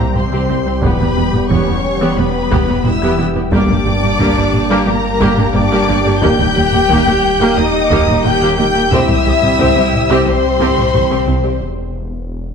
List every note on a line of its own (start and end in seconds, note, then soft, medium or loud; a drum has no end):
0.00 0.84 C2 medium
0.00 3.48 G3 medium
0.00 0.13 A#3 medium
0.00 0.83 C4 medium
0.00 3.48 G4 medium
0.00 0.15 A#4 medium
0.00 3.49 G5 medium
0.00 0.15 A#5 loud
0.14 0.22 C2 medium
0.14 0.26 E3 medium
0.14 0.82 C4 medium
0.14 0.22 C4 medium
0.14 0.22 G4 medium
0.14 0.83 C5 medium
0.14 0.83 C6 medium
0.14 taiko low-mid medium
0.32 0.39 C2 medium
0.32 0.42 C3 loud
0.32 0.48 C4 medium
0.32 0.48 G4 medium
0.49 0.56 C2 medium
0.49 0.56 C4 medium
0.49 0.59 C4 medium
0.49 0.56 G4 medium
0.66 0.73 C2 medium
0.66 0.76 G3 medium
0.66 0.73 C4 medium
0.66 0.73 G4 medium
0.82 3.54 E1 medium
0.82 0.90 E1 medium
0.82 0.90 E2 medium
0.82 0.93 E3 loud
0.82 1.49 B3 medium
0.82 3.53 B3 medium
0.82 0.99 B3 medium
0.82 0.98 G4 medium
0.82 1.49 B4 loud
0.82 1.50 B5 loud
0.82 taiko loud
0.99 1.07 E2 medium
0.99 1.10 G3 medium
0.99 1.07 B3 medium
0.99 1.07 G4 medium
0.99 taiko low-mid medium
1.17 1.23 E1 medium
1.17 1.24 E2 medium
1.17 1.27 G3 medium
1.17 1.24 B3 medium
1.17 1.24 G4 medium
1.33 1.40 E2 medium
1.33 1.40 B3 medium
1.33 1.44 B3 medium
1.33 1.40 G4 medium
1.33 taiko low-mid medium
1.49 1.57 E1 medium
1.49 1.57 E2 medium
1.49 1.61 E3 loud
1.49 1.66 B3 medium
1.49 2.18 C#4 medium
1.49 1.66 G4 medium
1.49 2.16 C#5 loud
1.49 2.16 C#6 loud
1.49 taiko medium
1.67 1.74 E2 medium
1.67 1.77 G3 medium
1.67 1.74 B3 medium
1.67 1.74 G4 medium
2.01 2.08 E2 medium
2.01 2.11 E3 loud
2.01 2.16 B3 medium
2.01 2.16 G4 medium
2.17 2.25 E1 medium
2.17 2.25 E2 medium
2.17 2.28 G3 medium
2.17 2.24 B3 medium
2.17 2.85 B3 loud
2.17 2.25 G4 medium
2.17 2.85 B4 loud
2.17 2.85 B5 loud
2.51 2.58 E1 medium
2.51 2.58 E2 loud
2.51 2.62 E3 loud
2.51 2.67 B3 medium
2.51 2.67 G4 medium
2.51 taiko medium
2.68 2.75 E2 medium
2.68 2.78 B3 medium
2.68 2.75 B3 medium
2.68 2.75 G4 medium
2.68 taiko low-mid medium
2.85 2.92 E1 medium
2.85 2.92 E2 medium
2.85 2.95 G3 medium
2.85 2.92 B3 medium
2.85 3.18 E4 medium
2.85 2.92 G4 medium
2.85 3.19 E5 medium
2.85 3.19 E6 loud
2.85 taiko low-mid medium
3.01 3.08 E2 loud
3.01 3.12 E3 loud
3.01 3.18 B3 loud
3.01 3.18 G4 loud
3.18 3.26 E1 medium
3.18 3.25 E2 medium
3.18 3.26 B3 medium
3.18 3.29 E4 medium
3.18 3.26 G4 medium
3.35 3.42 E2 medium
3.35 3.46 B3 medium
3.35 3.42 B3 medium
3.35 3.42 G4 medium
3.52 6.24 G1 medium
3.52 3.59 G1 loud
3.52 3.59 G2 medium
3.52 3.63 G3 loud
3.52 8.88 G3 medium
3.52 3.68 A#3 loud
3.52 8.92 A#3 medium
3.52 4.84 D4 loud
3.52 3.68 G4 loud
3.52 8.88 G4 medium
3.52 4.84 D5 loud
3.52 8.88 G5 medium
3.52 4.83 D6 loud
3.52 taiko loud
3.69 3.76 G2 medium
3.69 3.76 A#3 medium
3.69 3.80 A#3 medium
3.69 3.76 G4 medium
3.69 taiko low-mid medium
3.86 3.93 G1 medium
3.86 3.93 G2 medium
3.86 3.93 A#3 medium
3.86 3.97 A#3 medium
3.86 3.93 G4 medium
4.02 4.09 G2 medium
4.02 4.10 A#3 medium
4.02 4.13 D4 medium
4.02 4.10 G4 medium
4.02 taiko low-mid medium
4.19 4.27 G1 loud
4.19 4.26 G2 loud
4.19 4.30 G3 loud
4.19 4.35 A#3 loud
4.19 4.35 G4 loud
4.19 taiko medium
4.36 4.43 G2 medium
4.36 4.43 A#3 medium
4.36 4.47 A#3 medium
4.36 4.43 G4 medium
4.53 taiko low-mid medium
4.70 4.77 G2 loud
4.70 4.81 G3 loud
4.70 4.85 A#3 loud
4.70 4.85 G4 loud
4.86 4.94 G1 medium
4.86 4.94 G2 medium
4.86 4.93 A#3 medium
4.86 5.55 A#3 loud
4.86 4.98 A#3 medium
4.86 4.93 G4 medium
4.86 5.55 A#4 loud
4.86 5.54 A#5 loud
5.20 5.28 G1 loud
5.20 5.27 G2 loud
5.20 5.31 G3 loud
5.20 5.36 A#3 loud
5.20 5.36 G4 loud
5.20 taiko medium
5.37 5.45 G2 medium
5.37 5.44 A#3 medium
5.37 5.48 D4 medium
5.37 5.44 G4 medium
5.37 taiko low-mid medium
5.54 5.62 G1 medium
5.54 5.61 G2 medium
5.54 5.61 A#3 medium
5.54 5.65 A#3 medium
5.54 6.22 D4 loud
5.54 5.61 G4 medium
5.54 6.23 D5 loud
5.54 6.22 D6 loud
5.54 taiko low-mid medium
5.71 5.78 G2 loud
5.71 5.82 G3 loud
5.71 5.87 A#3 loud
5.71 5.87 G4 loud
5.88 5.95 G1 medium
5.88 5.95 G2 medium
5.88 5.95 A#3 loud
5.88 5.95 G4 medium
5.88 5.98 G4 medium
6.05 6.12 G2 medium
6.05 6.12 A#3 medium
6.05 6.15 D4 medium
6.05 6.12 G4 medium
6.22 8.93 D#1 medium
6.22 6.29 D#2 loud
6.22 6.32 D#3 loud
6.22 6.38 A#3 loud
6.22 6.38 G4 loud
6.22 7.58 G4 loud
6.22 7.57 G5 loud
6.22 7.54 G6 loud
6.22 taiko loud
6.39 6.46 D#2 medium
6.39 6.49 G3 medium
6.39 6.46 A#3 medium
6.39 6.46 G4 medium
6.39 taiko low-mid medium
6.56 6.63 D#2 medium
6.56 6.66 G3 medium
6.56 6.63 A#3 medium
6.56 6.63 G4 medium
6.72 6.80 D#2 medium
6.72 6.83 A#3 medium
6.72 6.80 A#3 medium
6.72 6.80 G4 medium
6.72 taiko low-mid medium
6.89 6.96 D#2 loud
6.89 7.00 D#3 loud
6.89 7.06 A#3 loud
6.89 7.06 G4 loud
6.89 taiko medium
7.07 7.13 D#2 medium
7.07 7.17 G3 medium
7.07 7.14 A#3 medium
7.07 7.14 G4 medium
7.40 7.47 D#2 loud
7.40 7.50 D#3 loud
7.40 7.56 A#3 loud
7.40 7.56 G4 loud
7.57 7.64 D#2 medium
7.57 7.67 G3 medium
7.57 7.64 A#3 medium
7.57 8.23 D#4 loud
7.57 7.64 G4 medium
7.57 8.25 D#5 loud
7.57 8.24 D#6 loud
7.90 7.97 D#2 loud
7.90 7.98 D#2 loud
7.90 8.01 D#3 loud
7.90 8.06 A#3 loud
7.90 8.06 G4 loud
7.90 taiko medium
8.07 8.14 D#2 medium
8.07 8.14 A#3 medium
8.07 8.18 A#3 medium
8.07 8.14 G4 medium
8.07 taiko low-mid medium
8.24 8.31 D#2 medium
8.24 8.35 G3 medium
8.24 8.31 A#3 loud
8.24 8.31 G4 medium
8.24 8.58 G4 loud
8.24 8.57 G5 loud
8.24 8.57 G6 loud
8.24 taiko low-mid medium
8.41 8.48 D#2 loud
8.41 8.51 D#3 loud
8.41 8.57 A#3 loud
8.41 8.57 G4 loud
8.58 8.65 D#2 medium
8.58 8.65 A#3 medium
8.58 8.68 D#4 medium
8.58 8.65 G4 medium
8.58 8.91 G4 loud
8.58 8.91 G5 loud
8.58 8.91 G6 loud
8.74 8.82 D#2 medium
8.74 8.85 A#3 medium
8.74 8.81 A#3 medium
8.74 8.81 G4 medium
8.91 8.98 C2 loud
8.91 11.63 C2 medium
8.91 8.99 C2 loud
8.91 9.02 C3 loud
8.91 11.58 G3 medium
8.91 9.08 C4 loud
8.91 11.62 C4 medium
8.91 10.10 E4 loud
8.91 9.07 G4 loud
8.91 11.58 G4 medium
8.91 10.27 E5 loud
8.91 11.58 G5 medium
8.91 10.27 E6 loud
8.91 taiko loud
9.08 9.16 C2 medium
9.08 9.18 E3 medium
9.08 9.16 C4 medium
9.08 9.15 G4 medium
9.08 taiko low-mid medium
9.25 9.32 C2 medium
9.25 9.35 E3 medium
9.25 9.32 C4 medium
9.25 9.32 G4 medium
9.42 9.49 C2 medium
9.42 9.52 G3 medium
9.42 9.49 C4 medium
9.42 9.49 G4 medium
9.42 taiko low-mid medium
9.59 9.66 C2 loud
9.59 9.69 C3 loud
9.59 9.74 C4 loud
9.59 9.74 G4 loud
9.59 taiko medium
9.75 9.83 C2 medium
9.75 9.86 E3 medium
9.75 9.82 C4 medium
9.75 9.82 G4 medium
9.93 taiko low-mid medium
10.09 10.16 C2 loud
10.09 10.20 C3 loud
10.09 10.25 C4 loud
10.09 10.25 G4 loud
10.26 10.33 C2 medium
10.26 10.37 E3 medium
10.26 10.33 C4 medium
10.26 11.59 C4 loud
10.26 10.33 G4 medium
10.26 11.59 C5 loud
10.26 11.62 C6 loud
10.60 10.67 C2 loud
10.60 10.70 C3 loud
10.60 10.76 C4 medium
10.60 10.75 G4 loud
10.60 taiko medium
10.77 10.84 C2 medium
10.77 10.87 G3 medium
10.77 10.84 C4 medium
10.77 10.84 G4 medium
10.77 taiko low-mid medium
10.93 11.00 C2 medium
10.93 11.01 C2 medium
10.93 11.04 E3 medium
10.93 11.00 C4 medium
10.93 11.01 G4 medium
10.93 taiko low-mid medium
11.10 11.17 C2 medium
11.10 11.21 C3 loud
11.10 11.26 C4 medium
11.10 11.26 G4 medium
11.27 11.34 C2 medium
11.27 11.35 C2 medium
11.27 11.34 C4 medium
11.27 11.38 C4 medium
11.27 11.34 G4 medium
11.43 11.51 C2 medium
11.43 11.54 G3 medium
11.43 11.50 C4 medium
11.43 11.50 G4 medium
11.61 12.54 E1 medium